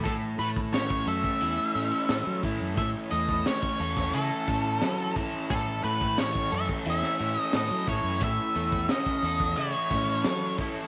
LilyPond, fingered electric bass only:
\new Staff \with { instrumentName = "Fingered electric bass" } { \clef bass \time 4/4 \key a \major \tempo 4 = 88 a,8 a,4 fis,16 r16 e,16 r16 a,16 r16 a,16 fis16 a,16 fis,16 | a,16 r16 e,8 r8 e,8 cis16 r16 a,8 fis8 r8 | a,8 a,4 fis,16 r16 e,16 r16 a,16 r16 a,16 fis16 a,16 fis,16 | a,16 r16 e,8 r8 e,8 cis16 r16 a,8 fis8 r8 | }